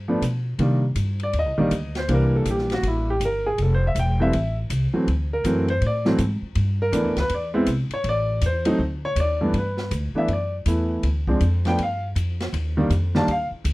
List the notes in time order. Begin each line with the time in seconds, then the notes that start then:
Already playing: G2
0.08 F3 A3 B3 D4
0.22 B2, kick, hi-hat pedal, ride
0.59 C3 D#3 G3 A#3 D4, kick, ride
0.95 G2, kick, hi-hat pedal, ride
1.20 D5, ride
1.33 D#2, kick, ride
1.39 D#5
1.46 C2
1.58 A#1 D#3 G3 A#3 D4
1.71 D2, kick, hi-hat pedal, ride
1.95 C5, snare, ride
2.08 C2 E3 G3 A#3 D4, kick, ride
2.13 A#4
2.36 A4
2.45 A#1, kick, hi-hat pedal, ride
2.51 G4
2.58 snare
2.70 F#4, snare, ride
2.83 A1, kick, ride
2.87 E4
3.10 G4
3.20 G1, kick, hi-hat pedal, ride
3.25 A#4
3.46 G#4
3.58 F1, kick, ride
3.62 A4
3.74 C5
3.87 E5
3.95 E1, kick, hi-hat pedal, ride
3.99 G5
4.19 E3 G3 A3 C4 E5
4.33 A1, kick, ride
4.70 C2, kick, hi-hat pedal, ride
4.93 E3 F#3 A3 C4, muted upright bass stroke
5.07 D2, kick, ride
5.33 A#4
5.44 F#2 E3 F#3 A3 C4, kick, hi-hat pedal, ride
5.68 C5, ride
5.81 A2, kick, ride
5.86 D5
6.05 E3 F#3 A3 C4, snare
6.18 G#2, kick, hi-hat pedal, ride
6.42 muted upright bass stroke
6.55 G2, kick, ride
6.82 A#4
6.92 F2 E3 A3 B3 D4, kick, hi-hat pedal, ride
7.05 E2
7.16 D2 B4, snare, ride
7.29 E2, kick, ride
7.34 D5
7.54 G#3 B3 C4 E4
7.66 C2, kick, hi-hat pedal, ride
7.89 muted upright bass stroke, ride
7.94 C#5
8.04 A1, kick, ride
8.09 D5
8.41 E2, kick, hi-hat pedal, ride
8.46 C5
8.65 F#3 A3 C4 D#4, ride
8.78 D2, kick
9.05 C#5
9.16 D#2, kick, hi-hat pedal, ride
9.20 D5
9.41 G2 E3 A3 B3 D4
9.53 G2, kick, ride
9.58 B4
9.77 snare
9.91 D2, kick, hi-hat pedal, ride
10.13 E3 A3 B3 D4, muted upright bass stroke
10.18 E5
10.28 F#2, kick, ride
10.33 D5
10.66 E2 E3 A3 B3 E4, kick, hi-hat pedal, ride
11.03 D2, kick, ride
11.27 F3 G#3 C4 D4, kick
11.40 F2, kick, hi-hat pedal, ride
11.65 F3 A3 B3 D4 G5, snare, ride
11.78 G2, kick, ride
11.83 F5
12.15 F2, kick, hi-hat pedal, ride
12.40 snare, ride
12.53 D#2, kick, ride
12.77 D#3 G3 A#3 D4
12.90 F2, kick, hi-hat pedal, ride
13.15 D#3 G3 A#3 D4 A5, snare
13.27 D#2 F5, kick, ride
13.51 muted upright bass stroke
13.64 D2, kick, hi-hat pedal, ride